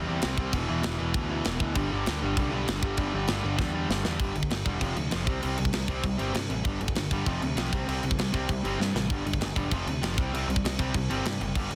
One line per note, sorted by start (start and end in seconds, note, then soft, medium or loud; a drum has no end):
0.08 0.21 E2 medium
0.08 0.22 C3 medium
0.08 0.23 G3 loud
0.08 0.23 C4 loud
0.22 0.50 C2 loud
0.22 0.39 C3 loud
0.22 0.39 G3 loud
0.22 0.37 C4 loud
0.22 snare loud
0.22 crash medium
0.38 0.53 C3 medium
0.38 0.54 G3 loud
0.38 0.52 C4 loud
0.38 kick medium
0.52 0.66 E1 loud
0.52 0.69 E2 loud
0.52 0.69 B2 medium
0.52 0.68 E3 medium
0.52 kick loud
0.52 crash medium
0.69 0.82 E1 medium
0.69 0.83 E2 medium
0.69 0.84 B2 medium
0.69 0.84 E3 loud
0.83 0.97 E1 loud
0.83 0.99 E2 medium
0.83 0.98 B2 medium
0.83 0.97 E3 medium
0.83 snare loud
0.83 crash medium
0.99 1.13 E1 medium
0.99 1.13 E2 medium
0.99 1.14 B2 medium
0.99 1.15 E3 medium
1.14 1.41 D2 medium
1.14 1.30 E2 loud
1.14 1.29 B2 loud
1.14 1.28 E3 loud
1.14 kick loud
1.14 crash medium
1.30 1.44 E2 medium
1.30 1.45 B2 medium
1.30 1.45 E3 loud
1.45 1.58 E1 loud
1.45 1.61 E2 loud
1.45 1.61 B2 loud
1.45 1.60 E3 loud
1.45 snare loud
1.45 crash medium
1.60 1.73 D2 loud
1.60 1.76 E2 medium
1.60 1.75 B2 loud
1.60 1.75 E3 loud
1.60 kick medium
1.75 1.89 G1 loud
1.75 1.93 G2 medium
1.75 1.92 D3 medium
1.75 1.92 G3 medium
1.75 kick loud
1.75 crash medium
1.92 2.05 G1 medium
1.92 2.08 G2 medium
1.92 2.08 D3 medium
1.92 2.09 G3 medium
2.06 2.20 D2 loud
2.06 2.24 G2 medium
2.06 2.23 D3 loud
2.06 2.22 G3 loud
2.06 snare loud
2.06 crash medium
2.22 2.35 G1 medium
2.22 2.38 G2 medium
2.22 2.37 D3 medium
2.22 2.39 G3 medium
2.37 2.50 C2 medium
2.37 2.54 G2 loud
2.37 2.53 D3 loud
2.37 2.52 G3 loud
2.37 kick loud
2.37 crash medium
2.52 2.65 B1 medium
2.52 2.68 G2 medium
2.52 2.68 D3 loud
2.52 2.69 G3 medium
2.68 2.94 G1 loud
2.68 2.84 G2 loud
2.68 2.83 D3 loud
2.68 2.82 G3 loud
2.68 snare loud
2.68 crash medium
2.83 2.97 G2 medium
2.83 2.98 D3 medium
2.83 2.99 G3 medium
2.83 kick loud
2.97 3.11 G1 loud
2.97 3.14 G2 loud
2.97 3.13 D3 loud
2.97 3.12 G3 loud
2.97 kick loud
2.97 crash medium
3.13 3.27 G1 medium
3.13 3.27 G2 medium
3.13 3.27 D3 medium
3.13 3.28 G3 medium
3.27 3.42 G1 medium
3.27 3.44 G2 loud
3.27 3.44 D3 medium
3.27 3.43 G3 medium
3.27 snare loud
3.27 crash medium
3.44 3.57 G1 medium
3.44 3.58 G2 medium
3.44 3.59 D3 medium
3.44 3.60 G3 medium
3.59 3.85 E2 medium
3.59 3.74 G2 loud
3.59 3.74 D3 loud
3.59 3.73 G3 loud
3.59 kick loud
3.59 snare medium
3.74 3.88 G2 medium
3.74 3.88 D3 medium
3.74 3.89 G3 loud
3.89 4.03 G1 loud
3.89 4.05 G2 loud
3.89 4.04 D3 loud
3.89 4.03 G3 loud
3.89 snare loud
4.04 4.18 E2 medium
4.04 4.18 G2 medium
4.04 4.19 D3 medium
4.04 4.19 G3 loud
4.04 snare loud
4.19 4.32 G1 medium
4.19 4.33 G2 medium
4.19 4.33 D3 medium
4.19 4.35 G3 medium
4.19 kick loud
4.19 crash medium
4.34 4.47 G1 medium
4.34 4.48 G2 medium
4.34 4.49 D3 medium
4.34 crash medium
4.43 kick medium
4.50 4.63 G1 loud
4.50 4.64 G2 medium
4.50 4.64 D3 medium
4.50 snare loud
4.50 crash medium
4.65 4.78 E1 medium
4.65 4.80 G2 medium
4.65 4.81 D3 medium
4.65 4.81 G3 medium
4.65 kick medium
4.65 crash medium
4.81 4.93 F1 medium
4.81 4.95 F2 medium
4.81 4.95 C3 medium
4.81 4.96 F3 loud
4.81 kick medium
4.81 crash medium
4.96 5.09 D2 medium
4.96 5.10 F2 medium
4.96 5.10 C3 medium
4.96 crash medium
5.11 5.27 F1 medium
5.11 5.26 F2 loud
5.11 5.26 C3 loud
5.11 5.27 F3 loud
5.11 snare loud
5.11 crash medium
5.27 5.39 C2 medium
5.27 5.41 C3 medium
5.27 5.42 G3 medium
5.27 5.42 C4 loud
5.27 kick loud
5.27 crash medium
5.42 5.55 C2 medium
5.42 5.57 C3 medium
5.42 5.57 G3 medium
5.42 5.57 C4 medium
5.42 crash medium
5.58 5.71 C2 medium
5.58 5.72 C3 medium
5.58 5.72 G3 medium
5.58 crash medium
5.65 kick medium
5.73 5.85 C2 medium
5.73 5.87 C3 medium
5.73 5.88 G3 medium
5.73 snare loud
5.73 crash medium
5.88 6.00 C2 medium
5.88 6.02 C3 medium
5.88 6.03 G3 loud
5.88 6.04 C4 loud
5.88 kick medium
5.88 crash medium
6.03 6.16 C2 medium
6.03 6.17 C3 medium
6.03 6.18 G3 medium
6.03 kick medium
6.03 crash medium
6.18 6.31 G1 medium
6.18 6.33 C3 loud
6.18 6.33 G3 medium
6.18 6.34 C4 medium
6.18 crash medium
6.34 6.47 G2 medium
6.34 6.48 C3 medium
6.34 6.48 G3 loud
6.34 snare loud
6.34 crash medium
6.49 6.61 A1 medium
6.49 6.64 C3 medium
6.49 6.64 G3 medium
6.49 crash medium
6.64 6.77 G1 medium
6.64 6.79 G2 medium
6.64 6.80 D3 medium
6.64 6.80 G3 medium
6.64 kick loud
6.64 crash medium
6.81 6.93 G1 medium
6.81 6.94 G2 medium
6.81 6.95 D3 medium
6.81 crash medium
6.88 kick medium
6.95 7.07 G1 medium
6.95 7.10 G2 medium
6.95 7.10 D3 medium
6.95 snare loud
6.95 crash medium
7.11 7.23 G1 medium
7.11 7.26 G2 medium
7.11 7.26 D3 medium
7.11 7.26 G3 loud
7.11 kick medium
7.11 crash medium
7.26 7.38 F1 medium
7.26 7.40 F2 loud
7.26 7.41 C3 loud
7.26 7.41 F3 loud
7.26 kick medium
7.26 crash medium
7.41 7.54 D2 medium
7.41 7.56 F2 medium
7.41 7.56 C3 medium
7.41 crash medium
7.57 7.69 B1 medium
7.57 7.71 F2 loud
7.57 7.70 C3 loud
7.57 7.72 F3 loud
7.57 snare loud
7.57 crash medium
7.72 7.84 C2 medium
7.72 7.87 C3 medium
7.72 7.87 G3 loud
7.72 7.87 C4 loud
7.72 kick loud
7.72 crash medium
7.88 7.99 C2 medium
7.88 8.02 C3 medium
7.88 8.02 G3 medium
7.88 8.03 C4 loud
7.88 crash medium
8.03 8.15 C2 medium
8.03 8.17 C3 medium
8.03 8.17 G3 medium
8.03 crash medium
8.11 kick medium
8.18 8.30 C2 loud
8.18 8.31 C3 medium
8.18 8.32 G3 medium
8.18 snare loud
8.18 crash medium
8.32 8.45 C2 medium
8.32 8.47 C3 medium
8.32 8.48 G3 medium
8.32 8.48 C4 loud
8.32 kick medium
8.32 crash medium
8.49 8.61 C2 medium
8.49 8.63 C3 medium
8.49 8.63 G3 medium
8.49 kick medium
8.49 crash medium
8.64 8.76 G1 medium
8.64 8.78 C3 medium
8.64 8.78 G3 medium
8.64 8.80 C4 loud
8.64 crash medium
8.79 8.91 G2 loud
8.79 8.93 C3 medium
8.79 8.93 G3 medium
8.79 snare medium
8.94 9.11 A1 medium
8.94 9.08 C3 medium
8.94 9.09 G3 medium
8.94 snare medium
9.09 9.22 G1 medium
9.09 9.24 G2 medium
9.09 9.24 D3 medium
9.09 9.25 G3 medium
9.09 kick loud
9.09 crash medium
9.25 9.37 G1 medium
9.25 9.39 G2 medium
9.25 9.39 D3 medium
9.25 crash medium
9.33 kick medium
9.40 9.52 G1 medium
9.40 9.54 G2 medium
9.40 9.55 D3 medium
9.40 snare loud
9.40 crash medium
9.56 9.68 E1 medium
9.56 9.70 G2 medium
9.56 9.71 D3 medium
9.56 9.71 G3 medium
9.56 kick medium
9.56 crash medium
9.71 9.83 F1 medium
9.71 9.86 F2 medium
9.71 9.86 C3 loud
9.71 9.87 F3 loud
9.71 kick medium
9.71 crash medium
9.86 9.98 D2 medium
9.86 10.00 F2 medium
9.86 10.01 C3 medium
9.86 crash medium
10.01 10.18 F1 loud
10.01 10.16 F2 medium
10.01 10.16 C3 loud
10.01 10.17 F3 loud
10.01 snare loud
10.01 crash medium
10.17 10.29 C2 medium
10.17 10.32 C3 medium
10.17 10.32 G3 loud
10.17 10.32 C4 loud
10.17 kick loud
10.17 crash medium
10.32 10.44 C2 medium
10.32 10.48 C3 medium
10.32 10.48 G3 medium
10.32 10.48 C4 medium
10.32 crash medium
10.47 10.59 C2 medium
10.47 10.62 C3 medium
10.47 10.62 G3 medium
10.47 crash medium
10.56 kick medium
10.64 10.75 C2 medium
10.64 10.78 C3 medium
10.64 10.78 G3 medium
10.64 snare loud
10.64 crash medium
10.79 10.91 C2 medium
10.79 10.93 C3 medium
10.79 10.93 G3 loud
10.79 10.94 C4 medium
10.79 kick medium
10.79 crash medium
10.94 11.06 C2 medium
10.94 11.08 C3 medium
10.94 11.08 G3 medium
10.94 kick loud
10.94 crash medium
11.09 11.21 G1 medium
11.09 11.24 C3 loud
11.09 11.24 G3 loud
11.09 11.24 C4 loud
11.09 crash medium
11.25 11.37 G2 loud
11.25 11.39 C3 medium
11.25 11.39 G3 medium
11.25 snare loud
11.25 crash medium
11.40 11.52 F#1 medium
11.40 11.54 C3 medium
11.40 11.54 G3 medium
11.40 crash medium
11.55 11.67 G1 loud
11.55 11.69 G2 medium
11.55 11.70 D3 medium
11.55 11.70 G3 medium
11.55 kick loud
11.55 crash medium
11.71 11.75 G1 medium
11.71 11.75 G2 medium
11.71 11.75 D3 medium
11.71 crash medium